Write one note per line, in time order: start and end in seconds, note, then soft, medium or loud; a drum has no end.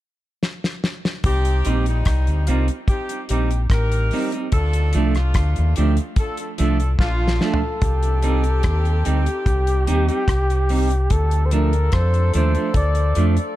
0.43 snare medium
0.64 snare medium
0.84 snare medium
1.05 snare medium
1.24 1.63 C2 loud
1.24 1.83 C4 loud
1.24 1.83 D#4 medium
1.24 1.83 G4 loud
1.24 kick loud
1.24 closed hi-hat medium
1.45 closed hi-hat medium
1.65 2.05 A#1 medium
1.65 1.84 G3 medium
1.65 1.84 C4 medium
1.65 1.84 D#4 medium
1.65 closed hi-hat medium
1.86 2.44 G3 medium
1.86 2.44 C4 medium
1.86 2.44 D#4 medium
1.86 closed hi-hat soft
2.05 2.27 C2 medium
2.05 kick loud
2.05 cross-stick loud
2.05 closed hi-hat medium
2.27 2.47 D2 medium
2.27 closed hi-hat soft
2.47 2.68 C2 medium
2.47 2.66 G3 medium
2.47 2.65 A#3 medium
2.47 2.67 C4 medium
2.47 2.65 D4 medium
2.47 2.67 D#4 medium
2.47 2.65 F4 medium
2.47 closed hi-hat medium
2.68 closed hi-hat soft
2.88 3.22 C4 medium
2.88 3.22 D#4 medium
2.88 3.22 G4 medium
2.88 kick loud
2.88 closed hi-hat medium
3.09 muted clean electric guitar stroke soft
3.09 closed hi-hat medium
3.29 3.69 A#1 medium
3.29 3.48 G3 medium
3.29 3.63 C4 medium
3.29 3.49 C4 medium
3.29 3.63 D#4 medium
3.29 3.49 D#4 medium
3.29 3.62 G4 medium
3.29 closed hi-hat medium
3.51 closed hi-hat soft
3.70 4.10 A1 medium
3.70 4.30 D#4 medium
3.70 4.30 G4 medium
3.70 4.30 A#4 loud
3.70 kick loud
3.70 cross-stick loud
3.70 closed hi-hat medium
3.92 closed hi-hat soft
4.11 4.31 G3 medium
4.11 4.31 C4 medium
4.11 4.31 D#4 medium
4.11 open hi-hat medium
4.32 4.47 G3 soft
4.32 4.47 C4 medium
4.32 4.47 D#4 medium
4.32 closed hi-hat soft
4.52 4.92 D2 loud
4.52 5.11 D4 medium
4.52 5.11 F4 medium
4.52 5.12 A4 loud
4.52 kick loud
4.52 closed hi-hat medium
4.73 closed hi-hat medium
4.93 5.34 C2 medium
4.93 5.13 F3 medium
4.93 5.13 A3 medium
4.93 5.13 D4 medium
4.93 closed hi-hat medium
5.15 5.73 A3 medium
5.15 5.73 D4 medium
5.15 5.73 F4 medium
5.15 cross-stick medium
5.15 closed hi-hat soft
5.34 5.56 D2 medium
5.34 kick loud
5.34 cross-stick loud
5.34 closed hi-hat medium
5.56 5.76 D#2 medium
5.56 closed hi-hat soft
5.76 5.97 D2 medium
5.76 5.95 F3 medium
5.76 5.95 A3 medium
5.76 5.94 C4 medium
5.76 5.96 D4 medium
5.76 5.94 D#4 medium
5.76 5.93 G4 medium
5.76 closed hi-hat medium
5.97 closed hi-hat soft
6.16 6.51 D4 medium
6.16 6.51 F4 medium
6.16 6.51 A4 medium
6.16 kick loud
6.16 closed hi-hat medium
6.37 closed hi-hat medium
6.58 6.98 C2 medium
6.58 6.77 F3 medium
6.58 6.77 A3 medium
6.58 6.78 D4 medium
6.58 6.93 D4 medium
6.58 6.92 F4 medium
6.58 6.92 A4 medium
6.58 closed hi-hat medium
6.80 closed hi-hat soft
6.99 7.39 A#1 medium
6.99 7.59 A3 medium
6.99 7.59 D4 medium
6.99 7.59 F4 loud
6.99 7.43 F4 medium
6.99 kick loud
6.99 snare medium
7.28 snare medium
7.41 7.59 F3 medium
7.41 7.60 A3 medium
7.41 7.60 D4 medium
7.41 9.08 A4 medium
7.41 snare medium
7.54 floor tom medium
7.82 8.60 C2 medium
7.82 10.66 C4 medium
7.82 10.66 D#4 medium
7.82 10.66 G4 medium
7.82 kick loud
7.82 closed hi-hat medium
8.03 closed hi-hat soft
8.23 8.41 G3 medium
8.23 8.42 C4 medium
8.23 8.42 D#4 medium
8.23 closed hi-hat medium
8.44 closed hi-hat soft
8.63 9.03 D#2 medium
8.63 kick loud
8.63 cross-stick loud
8.63 closed hi-hat medium
8.85 closed hi-hat soft
9.05 9.26 D2 medium
9.05 9.24 G3 medium
9.05 9.24 C4 medium
9.05 9.24 D#4 medium
9.05 11.13 G4 loud
9.05 closed hi-hat medium
9.26 closed hi-hat medium
9.46 9.85 C2 loud
9.46 kick loud
9.46 closed hi-hat medium
9.67 closed hi-hat medium
9.87 10.09 D#2 medium
9.87 10.06 G3 medium
9.87 10.06 C4 medium
9.87 10.06 D#4 medium
9.87 closed hi-hat medium
10.08 10.23 G3 soft
10.08 10.22 C4 medium
10.08 10.22 D#4 medium
10.08 closed hi-hat soft
10.28 11.07 C2 medium
10.28 kick loud
10.28 cross-stick loud
10.28 closed hi-hat medium
10.50 closed hi-hat soft
10.69 10.88 G3 medium
10.69 10.89 C4 medium
10.69 10.89 D#4 medium
10.69 open hi-hat medium
10.90 muted clean electric guitar stroke soft
10.90 closed hi-hat soft
11.10 11.89 D2 medium
11.10 13.56 D4 medium
11.10 13.56 F4 medium
11.10 13.56 A4 medium
11.10 11.47 A4 medium
11.10 kick loud
11.10 closed hi-hat medium
11.31 closed hi-hat soft
11.46 11.54 C5 medium
11.51 11.70 F3 medium
11.51 11.71 A3 medium
11.51 11.71 D4 loud
11.51 11.95 A#4 medium
11.51 closed hi-hat medium
11.73 closed hi-hat soft
11.92 12.32 F2 medium
11.92 12.35 C5 medium
11.92 kick loud
11.92 cross-stick loud
11.92 closed hi-hat medium
12.14 closed hi-hat soft
12.34 12.55 D#2 medium
12.34 12.53 F3 medium
12.34 12.53 A3 medium
12.34 12.53 D4 medium
12.34 12.73 C5 medium
12.34 closed hi-hat medium
12.55 12.69 F3 medium
12.55 12.69 A3 medium
12.55 12.69 D4 medium
12.55 closed hi-hat soft
12.74 13.14 D2 medium
12.74 13.28 D5 loud
12.74 kick loud
12.74 closed hi-hat medium
12.95 closed hi-hat medium
13.15 13.37 F2 medium
13.15 13.35 F3 medium
13.15 13.35 A3 loud
13.15 13.35 D4 medium
13.15 closed hi-hat medium
13.37 closed hi-hat soft